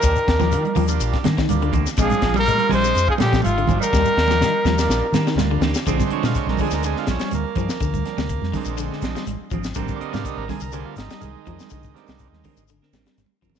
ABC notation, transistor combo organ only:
X:1
M:4/4
L:1/16
Q:1/4=123
K:Bbmix
V:1 name="Transistor combo organ"
z3 [G,B,DF]2 z2 [G,B,DF]2 z3 [G,B,DF]2 z2 | [A,CDF]2 z3 [A,CDF]2 z3 [A,CDF]2 z2 [A,CDG]2 | z3 [G,B,DF]2 z2 [G,B,DF]2 z3 [G,B,DF]2 z2 | z2 [c_d] f d B A B A F _D2 B,4- |
B,8 z8 | z2 [de] f e B A B A F E2 [E,A,]4- | [E,A,]8 z8 |]
V:2 name="Transistor combo organ" clef=bass
z16 | z16 | z16 | [D,A,C]8 [D,A,C]2 z6 |
z6 [D,A,C]6 z4 | [D,G,B,C]6 z2 [D,G,B,C]2 z6 | z2 [D,G,B,C]2 z12 |]